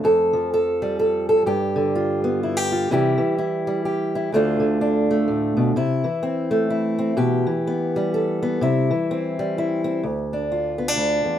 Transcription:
0.04 1.44 F2 medium
0.04 0.52 A4 medium
0.33 1.45 F3 medium
0.54 0.98 A4 medium
0.82 2.24 G3 medium
0.99 1.28 A4 medium
1.29 1.45 A4 medium
1.46 2.87 G2 medium
1.46 2.42 G4 medium
1.76 2.90 D3 medium
1.95 2.71 F4 medium
2.24 2.88 B3 medium
2.43 2.57 E4 medium
2.57 2.90 G4 medium
2.72 2.88 F4 medium
2.91 3.18 C3 medium
2.91 3.17 E3 medium
2.91 3.66 G3 medium
2.91 3.37 E4 medium
2.91 3.84 G4 medium
3.18 4.30 E3 medium
3.38 4.14 E4 medium
3.67 4.33 G3 medium
3.85 4.30 G4 medium
4.15 4.31 E4 medium
4.32 5.75 D2 medium
4.32 4.59 D3 medium
4.32 5.10 A3 medium
4.32 4.80 D4 medium
4.32 5.74 F4 medium
4.60 5.74 D3 medium
4.81 5.73 D4 medium
5.11 5.74 A3 medium
5.28 5.56 A2 medium
5.57 5.75 B2 medium
5.76 6.04 C3 medium
5.76 6.70 E4 medium
6.04 7.46 E3 medium
6.23 6.97 C4 medium
6.51 7.15 A3 medium
6.70 7.17 E4 medium
6.98 7.15 C4 medium
7.17 7.45 B2 medium
7.17 8.12 G4 medium
7.47 8.58 E3 medium
7.67 8.41 B3 medium
7.96 9.37 G3 medium
8.14 8.58 A4 medium
8.43 8.61 B3 medium
8.61 8.89 C3 medium
8.61 9.56 E4 medium
8.91 10.02 E3 medium
9.11 9.83 C4 medium
9.39 10.04 G3 medium
9.58 10.04 E4 medium
9.84 10.01 C4 medium
10.03 10.95 D2 medium
10.33 10.78 D4 soft
10.52 11.39 F4 soft
10.78 10.88 B3 medium
10.88 11.39 D4 soft
10.96 11.24 D2 medium
11.24 11.39 E2 medium

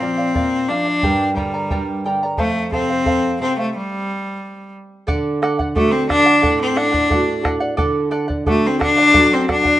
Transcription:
0.00 0.34 A#2 medium
0.00 0.35 F3 medium
0.00 0.70 C4 medium
0.00 0.18 A#4 medium
0.00 0.17 D5 medium
0.00 0.16 F5 medium
0.17 0.34 D5 soft
0.17 0.35 F5 medium
0.34 0.68 A#2 medium
0.34 0.68 A#4 medium
0.34 0.69 D5 medium
0.34 0.69 F5 medium
0.34 bombo low medium
0.68 1.02 F3 medium
0.68 1.34 D4 medium
0.68 0.86 A#4 medium
0.68 0.87 D5 medium
0.68 0.85 F5 medium
0.86 1.03 D5 soft
0.86 1.03 F5 medium
1.02 2.34 G2 medium
1.02 1.37 G4 medium
1.02 1.35 A#4 medium
1.02 1.36 D5 medium
1.02 1.34 G5 medium
1.02 1.36 A#5 medium
1.02 bombo low medium
1.35 1.70 D3 medium
1.35 2.00 G3 medium
1.35 1.53 A#4 medium
1.35 1.53 D5 medium
1.35 1.53 G5 medium
1.35 1.53 A#5 medium
1.35 bombo low medium
1.54 1.70 A#4 soft
1.54 1.71 D5 soft
1.54 1.71 A#5 soft
1.71 2.04 G3 medium
1.71 2.05 A#4 medium
1.71 2.05 D5 medium
1.71 2.04 G5 medium
1.71 2.05 A#5 medium
1.71 bombo low medium
2.04 2.37 D3 medium
2.04 2.22 A#4 medium
2.04 2.22 D5 medium
2.04 2.22 G5 medium
2.04 2.22 A#5 medium
2.23 2.38 A#4 soft
2.23 2.40 D5 soft
2.23 2.39 A#5 medium
2.38 3.05 F2 medium
2.38 2.70 A3 loud
2.38 2.71 A4 medium
2.38 2.72 C5 medium
2.38 2.72 F5 medium
2.38 bombo low medium
2.72 3.05 C3 medium
2.72 3.37 C4 loud
2.72 2.89 A4 medium
2.72 2.89 C5 medium
2.72 2.88 F5 medium
2.72 bombo low soft
2.90 3.05 C5 soft
2.90 3.06 F5 medium
3.05 3.39 F2 medium
3.05 3.40 A4 medium
3.05 3.40 C5 medium
3.05 3.40 F5 medium
3.05 bombo low medium
3.40 3.73 C3 medium
3.40 3.56 C4 medium
3.40 3.58 A4 medium
3.40 3.58 C5 medium
3.40 3.57 F5 medium
3.58 3.74 A3 medium
3.58 3.75 C5 soft
3.58 3.75 F5 medium
3.76 4.72 G3 medium
5.07 6.40 D3 medium
5.07 5.41 A4 medium
5.07 5.42 D5 loud
5.07 5.42 F#5 medium
5.07 bombo low medium
5.42 5.59 A4 medium
5.42 5.60 D5 medium
5.42 5.58 F#5 medium
5.42 bombo rim medium
5.59 5.75 D5 soft
5.59 5.76 F#5 medium
5.59 bombo low medium
5.76 6.42 A3 medium
5.76 5.93 A3 medium
5.76 6.42 D4 soft
5.76 6.42 F#4 medium
5.76 6.08 A4 medium
5.76 6.09 D5 medium
5.76 6.10 F#5 medium
5.76 bombo low medium
5.92 6.08 C4 medium
6.08 6.56 D4 loud
6.08 6.26 A4 medium
6.08 6.25 D5 medium
6.08 6.25 F#5 medium
6.08 bombo rim medium
6.08 bombo low medium
6.26 6.41 D5 soft
6.26 6.42 F#5 medium
6.42 7.75 A2 medium
6.42 6.74 A4 medium
6.42 6.75 D5 medium
6.42 6.76 F#5 medium
6.42 bombo low medium
6.62 6.78 C4 medium
6.75 7.45 D4 loud
6.75 6.94 A4 medium
6.75 6.93 D5 medium
6.75 6.91 F#5 medium
6.75 bombo rim medium
6.92 7.09 D5 soft
6.92 7.11 F#5 medium
6.92 bombo low medium
7.10 7.78 A3 soft
7.10 7.77 D4 soft
7.10 7.78 F#4 medium
7.10 7.42 A4 medium
7.10 7.43 D5 medium
7.10 7.44 F#5 medium
7.10 bombo low medium
7.43 7.61 A4 medium
7.43 7.60 D5 medium
7.43 7.59 F#5 medium
7.43 bombo rim medium
7.43 bombo low medium
7.60 7.76 D5 medium
7.60 7.77 F#5 medium
7.77 9.11 D3 medium
7.77 8.10 A4 medium
7.77 8.10 D5 medium
7.77 8.11 F#5 medium
7.77 bombo low medium
8.11 8.29 A4 medium
8.11 8.28 D5 medium
8.11 8.27 F#5 medium
8.28 8.46 D5 soft
8.28 8.46 F#5 medium
8.28 bombo low medium
8.46 9.13 A3 medium
8.46 8.68 A3 loud
8.46 9.13 D4 soft
8.46 9.13 F#4 medium
8.46 8.78 A4 medium
8.46 8.79 D5 medium
8.46 8.80 F#5 medium
8.46 bombo low medium
8.67 8.81 C4 loud
8.79 9.35 D4 loud
8.79 8.97 A4 medium
8.79 8.97 D5 medium
8.79 8.97 F#5 medium
8.79 bombo rim medium
8.79 bombo low medium
8.98 9.12 D5 medium
8.98 9.13 F#5 medium
9.13 9.80 F#3 medium
9.13 9.47 A4 medium
9.13 9.47 D5 medium
9.13 9.48 F#5 medium
9.13 bombo low medium
9.33 9.49 C4 loud
9.48 9.80 D4 loud
9.48 9.65 A4 medium
9.48 9.65 D5 medium
9.48 9.64 F#5 medium
9.48 bombo rim medium
9.48 bombo low soft
9.65 9.80 D5 soft
9.65 9.80 F#5 medium
9.65 bombo low medium

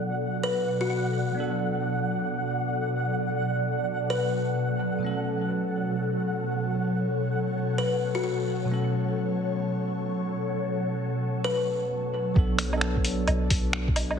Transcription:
0.00 4.99 B2 medium
0.00 1.31 F#3 medium
0.00 12.32 F#3 medium
0.00 1.33 B3 medium
0.00 1.35 D4 medium
0.00 1.37 A4 medium
0.00 12.31 A4 medium
0.00 4.99 D5 medium
0.00 11.90 F#5 medium
0.43 0.69 B4 medium
0.81 0.87 F#4 medium
0.90 1.00 F#4 medium
1.32 4.99 F#3 medium
1.32 5.00 B3 medium
1.38 5.01 D4 medium
1.38 5.03 A4 medium
4.10 4.35 B4 medium
4.99 8.64 B2 medium
4.99 8.66 F#3 medium
4.99 12.32 C#5 medium
5.03 12.32 B2 medium
5.03 8.67 A3 medium
5.03 8.68 C#4 medium
5.03 8.69 A4 medium
7.78 8.02 B4 medium
8.15 8.20 F#4 medium
8.24 8.33 F#4 medium
8.65 11.88 B2 medium
8.65 11.89 F#3 medium
8.70 11.90 A3 medium
8.70 11.91 C#4 medium
8.74 11.92 A4 medium
11.44 11.69 B4 medium
12.34 13.26 B1 loud
12.34 12.68 F#3 medium
12.34 12.70 B3 medium
12.34 12.70 D4 medium
12.34 14.19 F#4 medium
12.34 14.19 B4 medium
12.34 14.19 D5 medium
12.34 14.19 A5 medium
12.34 kick loud
12.39 12.71 A4 medium
12.59 finger snap medium
12.59 open hi-hat medium
12.69 14.15 F#3 medium
12.69 14.16 B3 medium
12.69 low woodblock medium
12.75 14.18 D4 medium
12.75 14.19 A4 medium
12.81 finger snap loud
12.97 kick medium
13.05 open hi-hat medium
13.28 13.49 B1 medium
13.28 closed hi-hat soft
13.28 low woodblock medium
13.50 14.18 B1 medium
13.50 kick loud
13.50 open hi-hat medium
13.73 finger snap loud
13.88 kick loud
13.96 open hi-hat medium
13.96 low woodblock medium
14.11 low woodblock medium

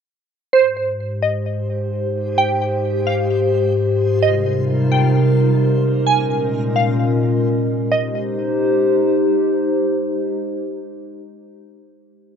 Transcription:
0.53 4.18 G#2 medium
0.53 4.18 G#3 medium
0.53 4.19 G#3 medium
0.53 4.18 G4 medium
0.53 2.36 G4 medium
0.53 4.18 C5 medium
0.53 1.18 C5 loud
0.53 6.03 C5 medium
1.23 1.88 D#5 medium
2.38 4.20 F4 medium
2.38 3.03 G5 medium
3.07 3.72 F5 medium
4.22 6.05 C3 medium
4.22 6.05 G3 medium
4.22 6.05 A#3 medium
4.22 6.05 D#4 medium
4.22 7.88 A#4 medium
4.22 4.88 D#5 medium
4.92 5.57 G5 medium
6.07 7.90 A#2 medium
6.07 7.90 G#3 medium
6.07 7.90 C#4 medium
6.07 6.72 G#5 loud
6.76 7.87 F5 medium
7.91 11.75 G#3 medium
7.91 11.75 D#4 medium
7.91 11.75 G4 medium
7.91 11.75 C5 medium
7.91 9.26 D#5 medium

